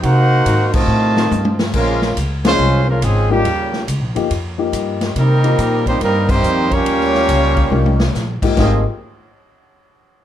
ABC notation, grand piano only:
X:1
M:4/4
L:1/8
Q:"Swing" 1/4=141
K:Ab
V:1 name="Grand piano"
z8 | z3 [F,B,EA] z3 [F,B,EG] | z3 [F,B,EG] z [F,B,EG]3 | z [F,B,EG]3 z4 |
z4 [F,B,EG] z2 [A,,F,B,EG] | [F,B,EG] z6 z |]